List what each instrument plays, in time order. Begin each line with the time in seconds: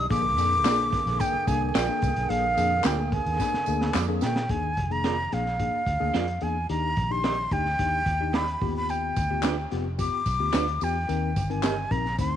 0.10 fingered electric bass A#1, tine electric piano A#2 A#3 D4 G#4, tonewheel organ D3 A#3 G#4, flute D6, kick, closed hi-hat, tambourine
0.37 fingered electric bass F2, tine electric piano A#3 D4 G#4, closed hi-hat, tambourine
0.64 fingered electric bass A#1, clean electric guitar A#3 F4 G#4 D5, tine electric piano A#3 D4 G#4, snare, clap, closed hi-hat, tambourine
0.93 kick, snare, closed hi-hat
1.06 fingered electric bass A#1, snare, closed hi-hat
1.20 tine electric piano A#3 D4 G#4, flute G5, kick, closed hi-hat, tambourine
1.34 muted fingered electric bass stroke
1.47 fingered electric bass C2, tine electric piano A#3 D4 G#4, flute G#5, kick, closed hi-hat, tambourine
1.69 flute G#5
1.75 fingered electric bass A#1, clean electric guitar A#3 F4 G#4 D5, flute G5, snare, clap, closed hi-hat, tambourine
1.88 tine electric piano A#3 D4 G#4
2.02 fingered electric bass C2, kick, closed hi-hat, tambourine
2.16 fingered electric bass B1, closed hi-hat
2.29 fingered electric bass A#1, tine electric piano A#2 A#3 D4 G#4, flute F5, closed hi-hat
2.57 fingered electric bass F2, tine electric piano A#3 D4 G#4, closed hi-hat, tambourine
2.84 fingered electric bass D2, clean electric guitar A#3 F4 G#4 D5, tine electric piano A#3 D4 G#4, flute G5, snare, clap, closed hi-hat, tambourine
3.12 flute G#5, kick, closed hi-hat
3.26 fingered electric bass D#2, closed hi-hat
3.39 tine electric piano A#3 D4 G#4, kick, snare, tambourine
3.54 muted fingered electric bass stroke, snare
3.66 fingered electric bass D2, tine electric piano A#3 D4 G#4, tambourine
3.81 snare
3.94 fingered electric bass F2, clean electric guitar A#3 F4 G#4 D5, snare, clap, tambourine
4.08 tine electric piano A#3 D4 G#4
4.21 fingered electric bass A#2, flute G5, snare, tambourine
4.36 snare
4.49 fingered electric bass D#2, tine electric piano D#3 A#3 D4 G#4, flute G#5, kick, closed hi-hat
4.77 fingered electric bass F1, kick, closed hi-hat
4.90 tine electric piano A#3 D4 G#4, flute A#5, closed hi-hat
5.04 clean electric guitar A#3 F4 G#4 D5, snare, closed hi-hat
5.32 fingered electric bass A#1, tine electric piano A#3 D4 G#4, flute F5, snare, closed hi-hat
5.46 snare
5.60 tine electric piano A#3 D4 G#4, kick, closed hi-hat
5.87 fingered electric bass D2, kick, closed hi-hat
6.00 fingered electric bass D2, tine electric piano A#3 D4 G#4
6.14 fingered electric bass F2, clean electric guitar A#3 F4 G#4 D5, snare, closed hi-hat
6.28 closed hi-hat
6.41 fingered electric bass E2, tine electric piano A#3 D4 G#4, flute G#5, closed hi-hat
6.69 fingered electric bass D#2, tine electric piano D#3 D4 D#4 G4, flute A#5, closed hi-hat
6.97 fingered electric bass A#1, kick, closed hi-hat
7.11 tine electric piano D4 D#4 G4, flute C6
7.24 clean electric guitar A#3 D#4 G4 D5, snare, closed hi-hat
7.51 fingered electric bass D2, tine electric piano D4 D#4 G4, flute G5, kick, closed hi-hat
7.66 snare
7.79 fingered electric bass D#2, tine electric piano D4 D#4 G4, kick, closed hi-hat
8.06 fingered electric bass D#2, kick, closed hi-hat
8.21 tine electric piano D4 D#4 G4
8.33 clean electric guitar A#3 D#4 G4 D5, flute B5, snare, closed hi-hat
8.48 closed hi-hat
8.61 fingered electric bass D#2, tine electric piano D#3 A#3 F4 G4, kick, open hi-hat
8.68 tine electric piano B3
8.77 flute B5
8.89 flute G5, closed hi-hat, tambourine
9.16 fingered electric bass D2, kick, closed hi-hat, tambourine
9.30 tine electric piano B3 F4 G4
9.43 clean electric guitar D4 F4 B4 D5, snare, clap, closed hi-hat, tambourine
9.71 fingered electric bass F1, tine electric piano B3 F4 G4, snare, closed hi-hat
9.98 tine electric piano B3 F4 G4, flute D6, kick, closed hi-hat, tambourine
10.26 fingered electric bass B1, kick, closed hi-hat, tambourine
10.40 fingered electric bass D2, tine electric piano B3 F4 G4
10.53 fingered electric bass D2, clean electric guitar D4 F4 B4 D5, snare, clap, closed hi-hat, tambourine
10.68 closed hi-hat
10.81 fingered electric bass E2, tine electric piano B3 F4 G4, flute G5, open hi-hat, tambourine
11.09 fingered electric bass D#2, tine electric piano D#3 C4 D#4 A#4, closed hi-hat, tambourine
11.36 fingered electric bass G1, kick, closed hi-hat, tambourine
11.50 tine electric piano C4 D#4 A#4, flute G#5, closed hi-hat
11.63 clean electric guitar D#4 G4 A#4 D#5, snare, clap, closed hi-hat, tambourine
11.91 fingered electric bass A#1, tine electric piano C4 D#4 A#4, flute A#5, kick, closed hi-hat
12.05 snare
12.18 fingered electric bass D2, tine electric piano C4 D#4 C5, flute C6, kick, closed hi-hat, tambourine